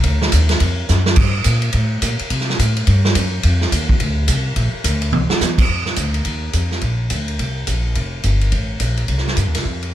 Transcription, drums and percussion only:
0.04 kick, ride
0.22 snare
0.32 kick, hi-hat pedal, ride
0.49 snare, ride
0.60 kick, ride
0.89 snare, hi-hat pedal
1.06 snare
1.16 kick, crash
1.44 kick, hi-hat pedal, ride
1.62 ride
1.73 kick, ride
2.02 kick, hi-hat pedal, ride
2.19 ride
2.30 kick, ride
2.40 snare
2.50 snare
2.59 kick, hi-hat pedal, ride
2.77 ride
2.87 kick, ride
3.05 snare
3.15 kick, hi-hat pedal, ride
3.43 kick, ride
3.61 snare
3.72 kick, hi-hat pedal, ride
3.89 kick
4.00 kick, ride
4.28 kick, hi-hat pedal, ride
4.56 kick, ride
4.84 kick, hi-hat pedal, ride
5.02 ride
5.13 high tom
5.30 snare
5.41 snare, hi-hat pedal
5.58 kick, crash
5.69 kick
5.86 snare
5.96 kick, hi-hat pedal, ride
6.14 ride
6.25 kick, ride
6.53 kick, hi-hat pedal, ride
6.71 snare
6.81 kick, ride
7.10 kick, hi-hat pedal, ride
7.28 ride
7.39 kick, ride
7.67 kick, hi-hat pedal, ride
7.95 kick, ride
8.24 kick, hi-hat pedal, ride
8.41 ride
8.52 kick, ride
8.80 kick, hi-hat pedal, ride
8.97 ride
9.08 kick, ride
9.18 snare
9.27 snare
9.37 kick, hi-hat pedal, ride
9.55 snare, ride
9.65 kick
9.82 ride

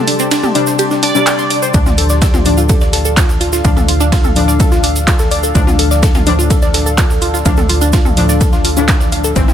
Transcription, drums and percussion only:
0.07 open hi-hat, shaker
0.19 closed hi-hat, shaker
0.31 snare, open hi-hat, ride, shaker
0.43 mid tom, shaker
0.55 open hi-hat, shaker
0.67 snare, shaker
0.79 ride, shaker
0.91 snare, shaker
1.03 open hi-hat, shaker
1.15 snare, shaker
1.27 snare, clap, ride, shaker
1.39 snare, shaker
1.50 open hi-hat, shaker
1.62 shaker
1.74 kick, ride, shaker
1.86 snare, mid tom, shaker
1.98 open hi-hat, shaker
2.09 snare, shaker
2.22 kick, snare, ride, shaker
2.34 snare, mid tom, shaker
2.46 open hi-hat, shaker
2.57 shaker
2.69 kick, ride, shaker
2.81 snare, shaker
2.93 snare, open hi-hat, shaker
3.05 shaker
3.17 kick, snare, clap, ride, shaker
3.29 snare, shaker
3.41 open hi-hat, shaker
3.53 snare, shaker
3.65 kick, ride, shaker
3.77 snare, mid tom, shaker
3.89 open hi-hat, shaker
4.00 closed hi-hat, shaker
4.12 kick, snare, open hi-hat, ride, shaker
4.24 mid tom, shaker
4.36 open hi-hat, shaker
4.48 snare, shaker
4.60 kick, ride, shaker
4.72 snare, shaker
4.84 open hi-hat, shaker
4.96 closed hi-hat, shaker
5.07 kick, snare, clap, ride, shaker
5.19 snare, shaker
5.31 open hi-hat, shaker
5.43 shaker
5.55 kick, ride, shaker
5.67 snare, mid tom, shaker
5.79 open hi-hat, shaker
5.91 snare, shaker
6.03 kick, snare, ride, shaker
6.15 snare, mid tom, shaker
6.27 open hi-hat, shaker
6.39 shaker
6.50 kick, ride, shaker
6.62 snare, shaker
6.74 snare, open hi-hat, shaker
6.86 shaker
6.98 kick, snare, clap, ride, shaker
7.10 snare, shaker
7.22 open hi-hat, shaker
7.34 snare, shaker
7.45 kick, ride, shaker
7.57 snare, mid tom, shaker
7.69 open hi-hat, shaker
7.82 closed hi-hat, shaker
7.93 kick, snare, open hi-hat, ride, shaker
8.05 mid tom, shaker
8.17 open hi-hat, shaker
8.29 snare, shaker
8.41 kick, ride, shaker
8.53 snare, shaker
8.65 open hi-hat, shaker
8.77 closed hi-hat, shaker
8.88 kick, snare, clap, ride, shaker
9.01 snare, shaker
9.12 open hi-hat, shaker
9.24 shaker
9.36 kick, ride, shaker
9.48 snare, mid tom, shaker

